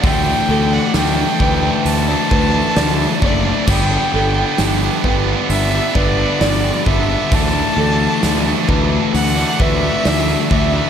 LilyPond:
<<
  \new Staff \with { instrumentName = "Violin" } { \time 4/4 \key d \mixolydian \tempo 4 = 66 g''8. fis''16 g''4 a''4. d''8 | g''4. r8 e''8 d''4 e''8 | a''4. r8 fis''8 e''4 e''8 | }
  \new Staff \with { instrumentName = "Felt piano" } { \time 4/4 \key d \mixolydian r8 a'4 b'4 b'8 d''4 | r8 a'4 b'4 b'8 d''4 | r8 a'4 b'4 b'8 d''4 | }
  \new Staff \with { instrumentName = "Distorted electric guitar" } { \time 4/4 \key d \mixolydian <d e a d'>8 <d e a d'>16 <e a d'>16 <d e a d'>16 <e a d'>16 <d e a d'>8. <e a d'>16 <d e a d'>16 <e a d'>16 <d e a d'>8 <d e a d'>16 <e a d'>16 | <g, d g b d'>8 <d g b d'>16 <g b d'>16 <g, d g b d'>16 <g b d'>16 <d g b d'>8. <g b d'>16 <d g b d'>16 <g b d'>16 <g, d g b d'>8 <d g b d'>16 <g b d'>16 | <d e a d'>8 <d e a d'>16 <e a d'>16 <d e a d'>16 <e a d'>16 <d e a d'>8. <e a d'>16 <d e a d'>16 <e a d'>16 <d e a d'>8 <d e a d'>16 <e a d'>16 | }
  \new Staff \with { instrumentName = "Overdriven electric guitar" } { \time 4/4 \key d \mixolydian <d e a d'>16 <e a d'>16 <d e a d'>8 <d e a d'>8 <d e a d'>16 <e a d'>8 <e a d'>16 <d e a d'>16 <e a d'>16 <d e a d'>8 <d e a d'>16 <e a d'>16 | <g, d g b d'>16 <g b d'>16 <d g b d'>8 <g, d g b d'>8 <d g b d'>16 <g b d'>8 <g b d'>16 <d g b d'>16 <g b d'>16 <g, d g b d'>8 <d g b d'>16 <g b d'>16 | <d e a d'>16 <e a d'>16 <d e a d'>8 <d e a d'>8 <d e a d'>16 <e a d'>8 <e a d'>16 <d e a d'>16 <e a d'>16 <d e a d'>8 <d e a d'>16 <e a d'>16 | }
  \new Staff \with { instrumentName = "Fingered electric bass" } { \clef bass \time 4/4 \key d \mixolydian d,8 d,8 d,8 d,8 d,8 d,8 d,8 fis,,8 | g,,8 g,,8 g,,8 g,,8 g,,8 g,,8 g,,8 g,,8 | d,8 d,8 d,8 d,8 d,8 d,8 d,8 d,8 | }
  \new DrumStaff \with { instrumentName = "Drums" } \drummode { \time 4/4 <hho bd>4 <hho sn>8 bd8 hho8 bd8 <hho sn>8 bd8 | <cymc bd>4 <hho sn>8 bd8 hho8 bd8 <hho sn>8 bd8 | <hho bd>4 <hho sn>8 bd8 hho8 bd8 <hho sn>8 bd8 | }
>>